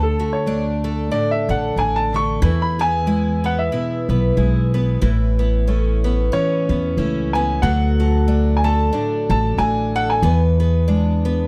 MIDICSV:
0, 0, Header, 1, 5, 480
1, 0, Start_track
1, 0, Tempo, 650548
1, 1787, Time_signature, 4, 2, 24, 8
1, 8466, End_track
2, 0, Start_track
2, 0, Title_t, "Upright piano"
2, 0, Program_c, 0, 0
2, 22, Note_on_c, 0, 69, 64
2, 243, Note_on_c, 0, 73, 63
2, 259, Note_off_c, 0, 69, 0
2, 466, Note_off_c, 0, 73, 0
2, 824, Note_on_c, 0, 74, 82
2, 952, Note_off_c, 0, 74, 0
2, 968, Note_on_c, 0, 76, 70
2, 1092, Note_off_c, 0, 76, 0
2, 1110, Note_on_c, 0, 78, 72
2, 1318, Note_off_c, 0, 78, 0
2, 1318, Note_on_c, 0, 80, 80
2, 1446, Note_on_c, 0, 81, 86
2, 1452, Note_off_c, 0, 80, 0
2, 1585, Note_off_c, 0, 81, 0
2, 1593, Note_on_c, 0, 85, 86
2, 1906, Note_off_c, 0, 85, 0
2, 1934, Note_on_c, 0, 83, 81
2, 2055, Note_off_c, 0, 83, 0
2, 2073, Note_on_c, 0, 80, 91
2, 2516, Note_off_c, 0, 80, 0
2, 2551, Note_on_c, 0, 78, 73
2, 2646, Note_on_c, 0, 76, 67
2, 2652, Note_off_c, 0, 78, 0
2, 3335, Note_off_c, 0, 76, 0
2, 4672, Note_on_c, 0, 73, 76
2, 5411, Note_on_c, 0, 80, 80
2, 5443, Note_off_c, 0, 73, 0
2, 5623, Note_on_c, 0, 78, 82
2, 5629, Note_off_c, 0, 80, 0
2, 6289, Note_off_c, 0, 78, 0
2, 6321, Note_on_c, 0, 80, 73
2, 6378, Note_on_c, 0, 81, 91
2, 6379, Note_off_c, 0, 80, 0
2, 6855, Note_off_c, 0, 81, 0
2, 6866, Note_on_c, 0, 81, 90
2, 7072, Note_on_c, 0, 80, 80
2, 7076, Note_off_c, 0, 81, 0
2, 7347, Note_on_c, 0, 78, 83
2, 7349, Note_off_c, 0, 80, 0
2, 7439, Note_off_c, 0, 78, 0
2, 7451, Note_on_c, 0, 80, 76
2, 7670, Note_off_c, 0, 80, 0
2, 8466, End_track
3, 0, Start_track
3, 0, Title_t, "Steel-string acoustic guitar"
3, 0, Program_c, 1, 25
3, 0, Note_on_c, 1, 50, 66
3, 0, Note_on_c, 1, 69, 60
3, 145, Note_on_c, 1, 66, 47
3, 342, Note_on_c, 1, 57, 64
3, 615, Note_off_c, 1, 69, 0
3, 624, Note_on_c, 1, 69, 55
3, 824, Note_on_c, 1, 45, 60
3, 1093, Note_off_c, 1, 69, 0
3, 1102, Note_on_c, 1, 69, 57
3, 1305, Note_off_c, 1, 45, 0
3, 1561, Note_off_c, 1, 50, 0
3, 1569, Note_on_c, 1, 50, 55
3, 1760, Note_off_c, 1, 57, 0
3, 1765, Note_off_c, 1, 66, 0
3, 1782, Note_off_c, 1, 50, 0
3, 1787, Note_on_c, 1, 52, 66
3, 1788, Note_off_c, 1, 69, 0
3, 1792, Note_on_c, 1, 71, 56
3, 2057, Note_on_c, 1, 68, 46
3, 2262, Note_on_c, 1, 56, 60
3, 2536, Note_off_c, 1, 71, 0
3, 2539, Note_on_c, 1, 71, 59
3, 2750, Note_on_c, 1, 47, 57
3, 2757, Note_on_c, 1, 64, 56
3, 3019, Note_off_c, 1, 71, 0
3, 3027, Note_on_c, 1, 71, 49
3, 3214, Note_off_c, 1, 56, 0
3, 3219, Note_off_c, 1, 68, 0
3, 3223, Note_on_c, 1, 56, 54
3, 3227, Note_on_c, 1, 68, 49
3, 3493, Note_off_c, 1, 71, 0
3, 3502, Note_on_c, 1, 71, 50
3, 3680, Note_off_c, 1, 56, 0
3, 3682, Note_off_c, 1, 52, 0
3, 3682, Note_off_c, 1, 68, 0
3, 3683, Note_off_c, 1, 47, 0
3, 3683, Note_off_c, 1, 71, 0
3, 3687, Note_off_c, 1, 64, 0
3, 3707, Note_on_c, 1, 45, 65
3, 3711, Note_on_c, 1, 71, 61
3, 3988, Note_on_c, 1, 64, 46
3, 4193, Note_on_c, 1, 57, 62
3, 4460, Note_off_c, 1, 71, 0
3, 4470, Note_on_c, 1, 71, 60
3, 4670, Note_on_c, 1, 52, 62
3, 4675, Note_on_c, 1, 61, 60
3, 4944, Note_off_c, 1, 71, 0
3, 4954, Note_on_c, 1, 71, 55
3, 5144, Note_off_c, 1, 57, 0
3, 5151, Note_off_c, 1, 64, 0
3, 5153, Note_on_c, 1, 57, 53
3, 5159, Note_on_c, 1, 64, 55
3, 5418, Note_off_c, 1, 71, 0
3, 5427, Note_on_c, 1, 71, 60
3, 5603, Note_off_c, 1, 52, 0
3, 5604, Note_off_c, 1, 57, 0
3, 5605, Note_off_c, 1, 61, 0
3, 5605, Note_off_c, 1, 71, 0
3, 5626, Note_off_c, 1, 45, 0
3, 5632, Note_off_c, 1, 64, 0
3, 5632, Note_on_c, 1, 50, 65
3, 5637, Note_on_c, 1, 69, 62
3, 5907, Note_on_c, 1, 66, 48
3, 6107, Note_on_c, 1, 57, 65
3, 6377, Note_off_c, 1, 69, 0
3, 6385, Note_on_c, 1, 69, 57
3, 6591, Note_on_c, 1, 45, 64
3, 6598, Note_on_c, 1, 62, 56
3, 6862, Note_off_c, 1, 69, 0
3, 6871, Note_on_c, 1, 69, 54
3, 7058, Note_off_c, 1, 57, 0
3, 7066, Note_off_c, 1, 66, 0
3, 7067, Note_on_c, 1, 57, 52
3, 7075, Note_on_c, 1, 66, 52
3, 7334, Note_off_c, 1, 69, 0
3, 7343, Note_on_c, 1, 69, 56
3, 7521, Note_off_c, 1, 57, 0
3, 7526, Note_off_c, 1, 66, 0
3, 7527, Note_off_c, 1, 62, 0
3, 7548, Note_off_c, 1, 45, 0
3, 7548, Note_off_c, 1, 69, 0
3, 7549, Note_off_c, 1, 50, 0
3, 7552, Note_on_c, 1, 52, 73
3, 7558, Note_on_c, 1, 71, 68
3, 7822, Note_on_c, 1, 68, 52
3, 8030, Note_on_c, 1, 56, 65
3, 8303, Note_off_c, 1, 71, 0
3, 8305, Note_on_c, 1, 71, 64
3, 8466, Note_off_c, 1, 52, 0
3, 8466, Note_off_c, 1, 56, 0
3, 8466, Note_off_c, 1, 68, 0
3, 8466, Note_off_c, 1, 71, 0
3, 8466, End_track
4, 0, Start_track
4, 0, Title_t, "Twelve-string acoustic guitar"
4, 0, Program_c, 2, 25
4, 0, Note_on_c, 2, 57, 73
4, 135, Note_off_c, 2, 57, 0
4, 144, Note_on_c, 2, 57, 49
4, 348, Note_on_c, 2, 62, 55
4, 611, Note_off_c, 2, 57, 0
4, 620, Note_on_c, 2, 57, 53
4, 814, Note_off_c, 2, 62, 0
4, 822, Note_on_c, 2, 62, 56
4, 1092, Note_off_c, 2, 57, 0
4, 1100, Note_on_c, 2, 57, 51
4, 1300, Note_off_c, 2, 62, 0
4, 1309, Note_on_c, 2, 62, 48
4, 1572, Note_off_c, 2, 57, 0
4, 1581, Note_on_c, 2, 57, 49
4, 1785, Note_on_c, 2, 52, 72
4, 1842, Note_off_c, 2, 57, 0
4, 1842, Note_off_c, 2, 62, 0
4, 2061, Note_on_c, 2, 59, 56
4, 2267, Note_on_c, 2, 64, 51
4, 2535, Note_off_c, 2, 59, 0
4, 2538, Note_on_c, 2, 59, 51
4, 2743, Note_off_c, 2, 64, 0
4, 2746, Note_on_c, 2, 64, 53
4, 3013, Note_off_c, 2, 59, 0
4, 3022, Note_on_c, 2, 59, 44
4, 3217, Note_off_c, 2, 64, 0
4, 3225, Note_on_c, 2, 64, 50
4, 3488, Note_off_c, 2, 59, 0
4, 3497, Note_on_c, 2, 59, 50
4, 3692, Note_off_c, 2, 52, 0
4, 3700, Note_on_c, 2, 52, 71
4, 3760, Note_off_c, 2, 59, 0
4, 3760, Note_off_c, 2, 64, 0
4, 3976, Note_on_c, 2, 59, 53
4, 4187, Note_on_c, 2, 61, 49
4, 4449, Note_off_c, 2, 59, 0
4, 4458, Note_on_c, 2, 59, 55
4, 4655, Note_off_c, 2, 61, 0
4, 4663, Note_on_c, 2, 61, 57
4, 4929, Note_off_c, 2, 59, 0
4, 4938, Note_on_c, 2, 59, 46
4, 5140, Note_off_c, 2, 61, 0
4, 5149, Note_on_c, 2, 61, 48
4, 5415, Note_off_c, 2, 59, 0
4, 5424, Note_on_c, 2, 59, 52
4, 5623, Note_off_c, 2, 52, 0
4, 5631, Note_on_c, 2, 54, 71
4, 5682, Note_off_c, 2, 61, 0
4, 5683, Note_off_c, 2, 59, 0
4, 5900, Note_on_c, 2, 57, 58
4, 6108, Note_on_c, 2, 62, 57
4, 6366, Note_off_c, 2, 57, 0
4, 6375, Note_on_c, 2, 57, 53
4, 6584, Note_off_c, 2, 62, 0
4, 6586, Note_on_c, 2, 62, 60
4, 6852, Note_off_c, 2, 57, 0
4, 6861, Note_on_c, 2, 57, 51
4, 7064, Note_off_c, 2, 62, 0
4, 7073, Note_on_c, 2, 62, 54
4, 7338, Note_off_c, 2, 57, 0
4, 7346, Note_on_c, 2, 57, 58
4, 7546, Note_off_c, 2, 57, 0
4, 7548, Note_off_c, 2, 54, 0
4, 7548, Note_on_c, 2, 59, 72
4, 7604, Note_off_c, 2, 62, 0
4, 7816, Note_off_c, 2, 59, 0
4, 7819, Note_on_c, 2, 59, 58
4, 8026, Note_on_c, 2, 62, 54
4, 8297, Note_off_c, 2, 59, 0
4, 8300, Note_on_c, 2, 59, 58
4, 8466, Note_off_c, 2, 59, 0
4, 8466, Note_off_c, 2, 62, 0
4, 8466, End_track
5, 0, Start_track
5, 0, Title_t, "Upright bass"
5, 0, Program_c, 3, 32
5, 0, Note_on_c, 3, 38, 91
5, 797, Note_off_c, 3, 38, 0
5, 1097, Note_on_c, 3, 33, 86
5, 1295, Note_off_c, 3, 33, 0
5, 1301, Note_on_c, 3, 33, 67
5, 1760, Note_off_c, 3, 33, 0
5, 1785, Note_on_c, 3, 40, 93
5, 2716, Note_off_c, 3, 40, 0
5, 3016, Note_on_c, 3, 35, 79
5, 3215, Note_off_c, 3, 35, 0
5, 3223, Note_on_c, 3, 35, 75
5, 3680, Note_off_c, 3, 35, 0
5, 3705, Note_on_c, 3, 33, 95
5, 4636, Note_off_c, 3, 33, 0
5, 4936, Note_on_c, 3, 40, 88
5, 5135, Note_off_c, 3, 40, 0
5, 5144, Note_on_c, 3, 37, 75
5, 5601, Note_off_c, 3, 37, 0
5, 5627, Note_on_c, 3, 38, 104
5, 6557, Note_off_c, 3, 38, 0
5, 6858, Note_on_c, 3, 33, 99
5, 7055, Note_off_c, 3, 33, 0
5, 7065, Note_on_c, 3, 33, 75
5, 7521, Note_off_c, 3, 33, 0
5, 7544, Note_on_c, 3, 40, 101
5, 8466, Note_off_c, 3, 40, 0
5, 8466, End_track
0, 0, End_of_file